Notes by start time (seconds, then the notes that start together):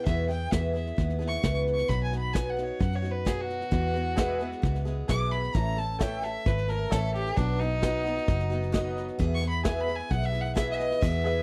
0.05 E2 B2 E3 B3 E4 G#4 E5, kick, snare
0.28 E3 B3 E4 G#4 G5, snare
0.51 E2 B2 E3 B3 E4 G#4 E5, kick, snare, hi-hat pedal
0.73 E3 B3 E4 G#4 E5, snare
0.87 snare
0.96 D#2 E3 B3 E4 G#4, kick, snare
1.10 snare
1.19 E3 B3 E4 G#4, snare
1.27 C#6
1.42 C#2 E2 B2 E3 B3 E4 G#4, kick, snare, hi-hat pedal
1.67 snare
1.74 C#6
1.78 snare
1.88 B1 B2 F#3 B3 D#4 F#4 B5, kick, snare
2.04 G#5
2.11 B3 D#4 F#4, snare
2.18 B5
2.33 B2 F#3 B3 D#4 F#4 G#5, kick, snare, hi-hat pedal
2.50 F#5
2.57 B3 D#4 F#4, snare
2.64 C#5
2.80 F#2 F#3 B3 D#4 F#4 F#5, kick, snare
2.92 C#5, snare
3.02 B3 D#4 F#4, snare
3.11 B4
3.25 B2 F#3 B3 D#4 F#4 G#4, kick, snare, hi-hat pedal
3.41 F#4
3.50 snare
3.61 snare
3.71 E2 B2 E3 G#3 B3 G#4, kick, snare
3.94 E3 G#3 B3 G#4, snare
4.16 E2 B2 E3 G#3 B3 G#4 B4 E5, kick, snare, hi-hat pedal
4.40 E3 G#3 B3 G#4, snare
4.52 snare
4.62 C#2 E3 G#3 B3 G#4, kick, snare
4.75 snare
4.85 E3 G#3 B3 G#4, snare
5.08 B1 E2 B2 E3 G#3 B3 G#4 B4 E5 D6, kick, snare, hi-hat pedal
5.31 B5, snare
5.43 snare
5.54 A1 A2 E3 A3 C#4 A4 A#5, kick, snare
5.77 A3 C#4 A4 A5, snare
5.99 A2 E3 A3 C#4 A4 C#5 E5 G5, kick, snare, hi-hat pedal
6.22 A3 C#4 A4 E5, snare
6.46 G#1 E3 A3 C#4 A4 B4, kick, snare
6.58 snare
6.68 A3 C#4 A4 A#4, snare
6.90 A1 A2 E3 A3 C#4 A4 C#5 E5, kick, snare, hi-hat pedal
7.14 G4, snare
7.26 snare
7.37 B1 B2 F#3 B3 D4 D#4 F#4, kick, snare
7.59 B3 D#4 F#4, snare
7.82 B2 F#3 B3 D#4 F#4 B4 D#5, kick, snare, hi-hat pedal
8.04 B3 D#4 F#4, snare
8.17 snare
8.27 F#1 F#3 B3 D#4 F#4, kick, snare
8.40 snare
8.50 B3 D#4 F#4, snare
8.63 snare
8.72 B2 F#3 B3 D#4 F#4 B4 D#5, kick, snare, hi-hat pedal
8.97 snare
9.08 snare
9.19 E2 B2 E3 B3 E4 G#4, kick, snare
9.35 C#6
9.41 E3 B3 E4 G#4, snare
9.49 B5
9.64 E2 B2 E3 B3 E4 G#4 B4 E5 G#5, kick, snare, hi-hat pedal
9.80 B5
9.87 E3 B3 E4 G#4, snare
9.95 G#5
9.99 snare
10.10 B1 E3 B3 E4 G#4 F#5, kick, snare
10.22 E5, snare
10.32 E3 B3 E4 G#4, snare
10.41 F#5
10.45 snare
10.55 E2 B2 E3 B3 E4 G#4 B4 E5, kick, snare, hi-hat pedal
10.71 E5
10.78 D#5, snare
10.91 snare
11.01 E2 B2 E3 B3 E4 G#4 E5, kick, snare, crash
11.24 G#4 B4 E5, snare